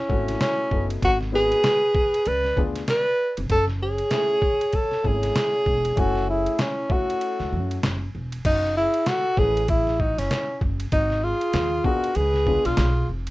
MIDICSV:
0, 0, Header, 1, 6, 480
1, 0, Start_track
1, 0, Tempo, 618557
1, 795, Time_signature, 4, 2, 24, 8
1, 10325, End_track
2, 0, Start_track
2, 0, Title_t, "Flute"
2, 0, Program_c, 0, 73
2, 0, Note_on_c, 0, 64, 72
2, 310, Note_off_c, 0, 64, 0
2, 315, Note_on_c, 0, 64, 69
2, 670, Note_off_c, 0, 64, 0
2, 795, Note_on_c, 0, 71, 73
2, 849, Note_off_c, 0, 71, 0
2, 1034, Note_on_c, 0, 71, 84
2, 1751, Note_on_c, 0, 74, 91
2, 1763, Note_off_c, 0, 71, 0
2, 2029, Note_off_c, 0, 74, 0
2, 2237, Note_on_c, 0, 74, 88
2, 2592, Note_off_c, 0, 74, 0
2, 2714, Note_on_c, 0, 73, 89
2, 2768, Note_off_c, 0, 73, 0
2, 2958, Note_on_c, 0, 73, 86
2, 3680, Note_off_c, 0, 73, 0
2, 3680, Note_on_c, 0, 73, 90
2, 3922, Note_off_c, 0, 73, 0
2, 3922, Note_on_c, 0, 73, 82
2, 4644, Note_on_c, 0, 69, 80
2, 4656, Note_off_c, 0, 73, 0
2, 4879, Note_off_c, 0, 69, 0
2, 4883, Note_on_c, 0, 68, 75
2, 5125, Note_on_c, 0, 64, 71
2, 5137, Note_off_c, 0, 68, 0
2, 5363, Note_on_c, 0, 69, 64
2, 5374, Note_off_c, 0, 64, 0
2, 6078, Note_off_c, 0, 69, 0
2, 6559, Note_on_c, 0, 66, 74
2, 6780, Note_off_c, 0, 66, 0
2, 6798, Note_on_c, 0, 68, 76
2, 7033, Note_on_c, 0, 69, 85
2, 7045, Note_off_c, 0, 68, 0
2, 7268, Note_on_c, 0, 71, 76
2, 7280, Note_off_c, 0, 69, 0
2, 7508, Note_off_c, 0, 71, 0
2, 7513, Note_on_c, 0, 68, 76
2, 7751, Note_on_c, 0, 66, 70
2, 7763, Note_off_c, 0, 68, 0
2, 7895, Note_on_c, 0, 64, 61
2, 7907, Note_off_c, 0, 66, 0
2, 8233, Note_off_c, 0, 64, 0
2, 8475, Note_on_c, 0, 66, 74
2, 8713, Note_on_c, 0, 68, 82
2, 8725, Note_off_c, 0, 66, 0
2, 9192, Note_on_c, 0, 70, 75
2, 9203, Note_off_c, 0, 68, 0
2, 9427, Note_on_c, 0, 71, 96
2, 9439, Note_off_c, 0, 70, 0
2, 9809, Note_on_c, 0, 68, 76
2, 9821, Note_off_c, 0, 71, 0
2, 10150, Note_off_c, 0, 68, 0
2, 10325, End_track
3, 0, Start_track
3, 0, Title_t, "Tenor saxophone"
3, 0, Program_c, 1, 66
3, 0, Note_on_c, 1, 61, 82
3, 319, Note_off_c, 1, 61, 0
3, 325, Note_on_c, 1, 61, 91
3, 676, Note_off_c, 1, 61, 0
3, 810, Note_on_c, 1, 66, 90
3, 915, Note_off_c, 1, 66, 0
3, 1050, Note_on_c, 1, 68, 107
3, 1766, Note_on_c, 1, 71, 92
3, 1778, Note_off_c, 1, 68, 0
3, 2037, Note_off_c, 1, 71, 0
3, 2250, Note_on_c, 1, 71, 99
3, 2599, Note_off_c, 1, 71, 0
3, 2728, Note_on_c, 1, 69, 100
3, 2833, Note_off_c, 1, 69, 0
3, 2971, Note_on_c, 1, 68, 108
3, 3689, Note_on_c, 1, 69, 89
3, 3701, Note_off_c, 1, 68, 0
3, 3929, Note_on_c, 1, 68, 97
3, 3941, Note_off_c, 1, 69, 0
3, 4650, Note_on_c, 1, 66, 95
3, 4662, Note_off_c, 1, 68, 0
3, 4882, Note_off_c, 1, 66, 0
3, 4889, Note_on_c, 1, 64, 80
3, 5133, Note_on_c, 1, 61, 82
3, 5144, Note_off_c, 1, 64, 0
3, 5371, Note_on_c, 1, 66, 84
3, 5383, Note_off_c, 1, 61, 0
3, 6083, Note_off_c, 1, 66, 0
3, 6568, Note_on_c, 1, 63, 89
3, 6785, Note_off_c, 1, 63, 0
3, 6805, Note_on_c, 1, 64, 88
3, 7045, Note_on_c, 1, 66, 99
3, 7056, Note_off_c, 1, 64, 0
3, 7284, Note_on_c, 1, 68, 101
3, 7296, Note_off_c, 1, 66, 0
3, 7519, Note_off_c, 1, 68, 0
3, 7523, Note_on_c, 1, 64, 85
3, 7759, Note_on_c, 1, 63, 83
3, 7771, Note_off_c, 1, 64, 0
3, 7908, Note_on_c, 1, 61, 76
3, 7920, Note_off_c, 1, 63, 0
3, 8240, Note_off_c, 1, 61, 0
3, 8479, Note_on_c, 1, 63, 92
3, 8721, Note_on_c, 1, 65, 101
3, 8733, Note_off_c, 1, 63, 0
3, 9195, Note_on_c, 1, 66, 88
3, 9207, Note_off_c, 1, 65, 0
3, 9437, Note_on_c, 1, 68, 104
3, 9449, Note_off_c, 1, 66, 0
3, 9823, Note_on_c, 1, 65, 83
3, 9835, Note_off_c, 1, 68, 0
3, 10157, Note_off_c, 1, 65, 0
3, 10325, End_track
4, 0, Start_track
4, 0, Title_t, "Upright piano"
4, 0, Program_c, 2, 0
4, 68, Note_on_c, 2, 57, 63
4, 74, Note_on_c, 2, 61, 61
4, 76, Note_on_c, 2, 64, 62
4, 81, Note_on_c, 2, 66, 75
4, 546, Note_off_c, 2, 66, 0
4, 548, Note_on_c, 2, 59, 55
4, 552, Note_on_c, 2, 63, 48
4, 558, Note_on_c, 2, 66, 49
4, 562, Note_on_c, 2, 69, 61
4, 752, Note_off_c, 2, 57, 0
4, 755, Note_off_c, 2, 61, 0
4, 756, Note_off_c, 2, 64, 0
4, 1014, Note_off_c, 2, 59, 0
4, 1020, Note_off_c, 2, 63, 0
4, 1025, Note_off_c, 2, 66, 0
4, 1025, Note_on_c, 2, 59, 59
4, 1032, Note_on_c, 2, 63, 59
4, 1037, Note_on_c, 2, 66, 55
4, 1041, Note_on_c, 2, 71, 69
4, 1240, Note_off_c, 2, 69, 0
4, 1327, Note_off_c, 2, 59, 0
4, 1330, Note_off_c, 2, 63, 0
4, 1333, Note_off_c, 2, 66, 0
4, 1335, Note_off_c, 2, 71, 0
4, 1987, Note_on_c, 2, 59, 63
4, 1992, Note_on_c, 2, 62, 61
4, 1996, Note_on_c, 2, 65, 60
4, 2001, Note_on_c, 2, 68, 73
4, 2172, Note_off_c, 2, 59, 0
4, 2175, Note_off_c, 2, 62, 0
4, 2177, Note_off_c, 2, 65, 0
4, 2180, Note_off_c, 2, 68, 0
4, 3189, Note_on_c, 2, 57, 55
4, 3192, Note_on_c, 2, 61, 54
4, 3199, Note_on_c, 2, 64, 48
4, 3203, Note_on_c, 2, 68, 64
4, 3373, Note_off_c, 2, 57, 0
4, 3375, Note_off_c, 2, 61, 0
4, 3378, Note_off_c, 2, 64, 0
4, 3380, Note_off_c, 2, 68, 0
4, 3905, Note_on_c, 2, 57, 49
4, 3910, Note_on_c, 2, 61, 51
4, 3914, Note_on_c, 2, 64, 55
4, 3919, Note_on_c, 2, 68, 55
4, 4591, Note_off_c, 2, 57, 0
4, 4593, Note_off_c, 2, 61, 0
4, 4595, Note_off_c, 2, 64, 0
4, 4598, Note_off_c, 2, 68, 0
4, 4624, Note_on_c, 2, 57, 67
4, 4632, Note_on_c, 2, 61, 65
4, 4634, Note_on_c, 2, 64, 64
4, 4640, Note_on_c, 2, 80, 80
4, 5310, Note_off_c, 2, 57, 0
4, 5314, Note_off_c, 2, 61, 0
4, 5315, Note_off_c, 2, 64, 0
4, 5318, Note_off_c, 2, 80, 0
4, 5347, Note_on_c, 2, 57, 64
4, 5352, Note_on_c, 2, 61, 52
4, 5356, Note_on_c, 2, 64, 49
4, 5362, Note_on_c, 2, 66, 69
4, 6032, Note_off_c, 2, 57, 0
4, 6034, Note_off_c, 2, 61, 0
4, 6036, Note_off_c, 2, 64, 0
4, 6039, Note_off_c, 2, 66, 0
4, 7268, Note_on_c, 2, 57, 60
4, 7273, Note_on_c, 2, 61, 50
4, 7278, Note_on_c, 2, 64, 53
4, 7283, Note_on_c, 2, 68, 64
4, 7453, Note_off_c, 2, 57, 0
4, 7455, Note_off_c, 2, 61, 0
4, 7458, Note_off_c, 2, 64, 0
4, 7460, Note_off_c, 2, 68, 0
4, 9188, Note_on_c, 2, 59, 62
4, 9192, Note_on_c, 2, 62, 55
4, 9197, Note_on_c, 2, 65, 59
4, 9200, Note_on_c, 2, 68, 68
4, 9373, Note_off_c, 2, 59, 0
4, 9375, Note_off_c, 2, 62, 0
4, 9377, Note_off_c, 2, 65, 0
4, 9379, Note_off_c, 2, 68, 0
4, 9669, Note_on_c, 2, 59, 62
4, 9674, Note_on_c, 2, 62, 58
4, 9679, Note_on_c, 2, 65, 56
4, 9686, Note_on_c, 2, 68, 60
4, 9969, Note_off_c, 2, 59, 0
4, 9971, Note_off_c, 2, 62, 0
4, 9974, Note_off_c, 2, 65, 0
4, 9977, Note_off_c, 2, 68, 0
4, 10325, End_track
5, 0, Start_track
5, 0, Title_t, "Upright bass"
5, 0, Program_c, 3, 32
5, 76, Note_on_c, 3, 32, 73
5, 266, Note_off_c, 3, 32, 0
5, 556, Note_on_c, 3, 30, 77
5, 747, Note_off_c, 3, 30, 0
5, 798, Note_on_c, 3, 32, 84
5, 1178, Note_off_c, 3, 32, 0
5, 1759, Note_on_c, 3, 37, 94
5, 1948, Note_off_c, 3, 37, 0
5, 1996, Note_on_c, 3, 38, 87
5, 2187, Note_off_c, 3, 38, 0
5, 2622, Note_on_c, 3, 29, 82
5, 2697, Note_off_c, 3, 29, 0
5, 2716, Note_on_c, 3, 30, 89
5, 3097, Note_off_c, 3, 30, 0
5, 3917, Note_on_c, 3, 32, 85
5, 4107, Note_off_c, 3, 32, 0
5, 4396, Note_on_c, 3, 28, 79
5, 4586, Note_off_c, 3, 28, 0
5, 4636, Note_on_c, 3, 30, 81
5, 5017, Note_off_c, 3, 30, 0
5, 5744, Note_on_c, 3, 37, 89
5, 5840, Note_on_c, 3, 42, 82
5, 5852, Note_off_c, 3, 37, 0
5, 6029, Note_off_c, 3, 42, 0
5, 6084, Note_on_c, 3, 30, 83
5, 6271, Note_off_c, 3, 30, 0
5, 6323, Note_on_c, 3, 28, 76
5, 6510, Note_off_c, 3, 28, 0
5, 6558, Note_on_c, 3, 30, 86
5, 6861, Note_off_c, 3, 30, 0
5, 7276, Note_on_c, 3, 33, 78
5, 7867, Note_off_c, 3, 33, 0
5, 7902, Note_on_c, 3, 30, 80
5, 7977, Note_off_c, 3, 30, 0
5, 8237, Note_on_c, 3, 30, 84
5, 8427, Note_off_c, 3, 30, 0
5, 8477, Note_on_c, 3, 32, 78
5, 8781, Note_off_c, 3, 32, 0
5, 8956, Note_on_c, 3, 39, 92
5, 9146, Note_off_c, 3, 39, 0
5, 9437, Note_on_c, 3, 37, 95
5, 9741, Note_off_c, 3, 37, 0
5, 9820, Note_on_c, 3, 35, 81
5, 9896, Note_off_c, 3, 35, 0
5, 9918, Note_on_c, 3, 35, 90
5, 10108, Note_off_c, 3, 35, 0
5, 10159, Note_on_c, 3, 29, 74
5, 10325, Note_off_c, 3, 29, 0
5, 10325, End_track
6, 0, Start_track
6, 0, Title_t, "Drums"
6, 75, Note_on_c, 9, 36, 82
6, 152, Note_off_c, 9, 36, 0
6, 220, Note_on_c, 9, 51, 59
6, 221, Note_on_c, 9, 38, 29
6, 298, Note_off_c, 9, 38, 0
6, 298, Note_off_c, 9, 51, 0
6, 315, Note_on_c, 9, 44, 49
6, 315, Note_on_c, 9, 51, 71
6, 316, Note_on_c, 9, 38, 106
6, 393, Note_off_c, 9, 44, 0
6, 393, Note_off_c, 9, 51, 0
6, 394, Note_off_c, 9, 38, 0
6, 554, Note_on_c, 9, 36, 78
6, 632, Note_off_c, 9, 36, 0
6, 701, Note_on_c, 9, 51, 58
6, 778, Note_off_c, 9, 51, 0
6, 795, Note_on_c, 9, 36, 109
6, 796, Note_on_c, 9, 51, 60
6, 873, Note_off_c, 9, 36, 0
6, 873, Note_off_c, 9, 51, 0
6, 937, Note_on_c, 9, 38, 28
6, 1014, Note_off_c, 9, 38, 0
6, 1177, Note_on_c, 9, 51, 49
6, 1255, Note_off_c, 9, 51, 0
6, 1270, Note_on_c, 9, 44, 47
6, 1270, Note_on_c, 9, 51, 65
6, 1273, Note_on_c, 9, 38, 109
6, 1347, Note_off_c, 9, 44, 0
6, 1347, Note_off_c, 9, 51, 0
6, 1350, Note_off_c, 9, 38, 0
6, 1510, Note_on_c, 9, 36, 100
6, 1588, Note_off_c, 9, 36, 0
6, 1662, Note_on_c, 9, 51, 53
6, 1739, Note_off_c, 9, 51, 0
6, 1750, Note_on_c, 9, 51, 74
6, 1828, Note_off_c, 9, 51, 0
6, 1897, Note_on_c, 9, 38, 34
6, 1974, Note_off_c, 9, 38, 0
6, 1994, Note_on_c, 9, 36, 81
6, 2072, Note_off_c, 9, 36, 0
6, 2138, Note_on_c, 9, 51, 59
6, 2139, Note_on_c, 9, 38, 32
6, 2216, Note_off_c, 9, 38, 0
6, 2216, Note_off_c, 9, 51, 0
6, 2233, Note_on_c, 9, 44, 51
6, 2233, Note_on_c, 9, 51, 70
6, 2234, Note_on_c, 9, 38, 98
6, 2311, Note_off_c, 9, 44, 0
6, 2311, Note_off_c, 9, 51, 0
6, 2312, Note_off_c, 9, 38, 0
6, 2616, Note_on_c, 9, 51, 61
6, 2694, Note_off_c, 9, 51, 0
6, 2713, Note_on_c, 9, 51, 61
6, 2714, Note_on_c, 9, 36, 91
6, 2790, Note_off_c, 9, 51, 0
6, 2791, Note_off_c, 9, 36, 0
6, 2853, Note_on_c, 9, 38, 28
6, 2931, Note_off_c, 9, 38, 0
6, 3091, Note_on_c, 9, 51, 48
6, 3169, Note_off_c, 9, 51, 0
6, 3186, Note_on_c, 9, 44, 48
6, 3186, Note_on_c, 9, 51, 67
6, 3189, Note_on_c, 9, 38, 102
6, 3264, Note_off_c, 9, 44, 0
6, 3264, Note_off_c, 9, 51, 0
6, 3267, Note_off_c, 9, 38, 0
6, 3429, Note_on_c, 9, 36, 90
6, 3507, Note_off_c, 9, 36, 0
6, 3579, Note_on_c, 9, 51, 53
6, 3656, Note_off_c, 9, 51, 0
6, 3668, Note_on_c, 9, 51, 65
6, 3674, Note_on_c, 9, 36, 79
6, 3745, Note_off_c, 9, 51, 0
6, 3751, Note_off_c, 9, 36, 0
6, 3813, Note_on_c, 9, 38, 36
6, 3891, Note_off_c, 9, 38, 0
6, 3914, Note_on_c, 9, 36, 71
6, 3992, Note_off_c, 9, 36, 0
6, 4059, Note_on_c, 9, 38, 30
6, 4059, Note_on_c, 9, 51, 63
6, 4136, Note_off_c, 9, 51, 0
6, 4137, Note_off_c, 9, 38, 0
6, 4156, Note_on_c, 9, 44, 51
6, 4156, Note_on_c, 9, 51, 63
6, 4157, Note_on_c, 9, 38, 112
6, 4233, Note_off_c, 9, 44, 0
6, 4233, Note_off_c, 9, 51, 0
6, 4234, Note_off_c, 9, 38, 0
6, 4395, Note_on_c, 9, 36, 72
6, 4472, Note_off_c, 9, 36, 0
6, 4538, Note_on_c, 9, 51, 57
6, 4616, Note_off_c, 9, 51, 0
6, 4634, Note_on_c, 9, 51, 65
6, 4635, Note_on_c, 9, 36, 94
6, 4711, Note_off_c, 9, 51, 0
6, 4712, Note_off_c, 9, 36, 0
6, 4776, Note_on_c, 9, 38, 32
6, 4853, Note_off_c, 9, 38, 0
6, 5016, Note_on_c, 9, 51, 50
6, 5093, Note_off_c, 9, 51, 0
6, 5111, Note_on_c, 9, 44, 53
6, 5111, Note_on_c, 9, 51, 67
6, 5114, Note_on_c, 9, 38, 105
6, 5189, Note_off_c, 9, 44, 0
6, 5189, Note_off_c, 9, 51, 0
6, 5192, Note_off_c, 9, 38, 0
6, 5353, Note_on_c, 9, 36, 100
6, 5431, Note_off_c, 9, 36, 0
6, 5509, Note_on_c, 9, 51, 50
6, 5586, Note_off_c, 9, 51, 0
6, 5597, Note_on_c, 9, 51, 77
6, 5674, Note_off_c, 9, 51, 0
6, 5740, Note_on_c, 9, 38, 33
6, 5817, Note_off_c, 9, 38, 0
6, 5983, Note_on_c, 9, 51, 54
6, 6061, Note_off_c, 9, 51, 0
6, 6078, Note_on_c, 9, 44, 48
6, 6078, Note_on_c, 9, 51, 77
6, 6079, Note_on_c, 9, 38, 109
6, 6156, Note_off_c, 9, 44, 0
6, 6156, Note_off_c, 9, 51, 0
6, 6157, Note_off_c, 9, 38, 0
6, 6459, Note_on_c, 9, 51, 61
6, 6536, Note_off_c, 9, 51, 0
6, 6556, Note_on_c, 9, 49, 80
6, 6556, Note_on_c, 9, 51, 64
6, 6557, Note_on_c, 9, 36, 102
6, 6634, Note_off_c, 9, 36, 0
6, 6634, Note_off_c, 9, 49, 0
6, 6634, Note_off_c, 9, 51, 0
6, 6697, Note_on_c, 9, 38, 29
6, 6775, Note_off_c, 9, 38, 0
6, 6935, Note_on_c, 9, 51, 47
6, 7013, Note_off_c, 9, 51, 0
6, 7032, Note_on_c, 9, 44, 51
6, 7032, Note_on_c, 9, 51, 72
6, 7035, Note_on_c, 9, 38, 93
6, 7109, Note_off_c, 9, 44, 0
6, 7109, Note_off_c, 9, 51, 0
6, 7112, Note_off_c, 9, 38, 0
6, 7273, Note_on_c, 9, 36, 100
6, 7351, Note_off_c, 9, 36, 0
6, 7426, Note_on_c, 9, 51, 51
6, 7503, Note_off_c, 9, 51, 0
6, 7514, Note_on_c, 9, 51, 77
6, 7517, Note_on_c, 9, 36, 95
6, 7592, Note_off_c, 9, 51, 0
6, 7595, Note_off_c, 9, 36, 0
6, 7661, Note_on_c, 9, 38, 37
6, 7738, Note_off_c, 9, 38, 0
6, 7758, Note_on_c, 9, 36, 76
6, 7836, Note_off_c, 9, 36, 0
6, 7903, Note_on_c, 9, 51, 64
6, 7904, Note_on_c, 9, 38, 34
6, 7981, Note_off_c, 9, 51, 0
6, 7982, Note_off_c, 9, 38, 0
6, 7999, Note_on_c, 9, 44, 53
6, 7999, Note_on_c, 9, 51, 66
6, 8000, Note_on_c, 9, 38, 101
6, 8077, Note_off_c, 9, 38, 0
6, 8077, Note_off_c, 9, 44, 0
6, 8077, Note_off_c, 9, 51, 0
6, 8236, Note_on_c, 9, 36, 84
6, 8313, Note_off_c, 9, 36, 0
6, 8379, Note_on_c, 9, 51, 61
6, 8456, Note_off_c, 9, 51, 0
6, 8474, Note_on_c, 9, 51, 60
6, 8476, Note_on_c, 9, 36, 103
6, 8552, Note_off_c, 9, 51, 0
6, 8553, Note_off_c, 9, 36, 0
6, 8615, Note_on_c, 9, 38, 32
6, 8693, Note_off_c, 9, 38, 0
6, 8856, Note_on_c, 9, 51, 49
6, 8934, Note_off_c, 9, 51, 0
6, 8950, Note_on_c, 9, 44, 49
6, 8950, Note_on_c, 9, 51, 70
6, 8953, Note_on_c, 9, 38, 94
6, 9027, Note_off_c, 9, 44, 0
6, 9027, Note_off_c, 9, 51, 0
6, 9030, Note_off_c, 9, 38, 0
6, 9191, Note_on_c, 9, 36, 94
6, 9269, Note_off_c, 9, 36, 0
6, 9341, Note_on_c, 9, 51, 50
6, 9418, Note_off_c, 9, 51, 0
6, 9428, Note_on_c, 9, 51, 72
6, 9506, Note_off_c, 9, 51, 0
6, 9574, Note_on_c, 9, 38, 34
6, 9652, Note_off_c, 9, 38, 0
6, 9675, Note_on_c, 9, 36, 82
6, 9752, Note_off_c, 9, 36, 0
6, 9817, Note_on_c, 9, 51, 59
6, 9818, Note_on_c, 9, 38, 32
6, 9895, Note_off_c, 9, 38, 0
6, 9895, Note_off_c, 9, 51, 0
6, 9910, Note_on_c, 9, 44, 46
6, 9910, Note_on_c, 9, 51, 63
6, 9911, Note_on_c, 9, 38, 105
6, 9988, Note_off_c, 9, 38, 0
6, 9988, Note_off_c, 9, 44, 0
6, 9988, Note_off_c, 9, 51, 0
6, 10296, Note_on_c, 9, 51, 57
6, 10325, Note_off_c, 9, 51, 0
6, 10325, End_track
0, 0, End_of_file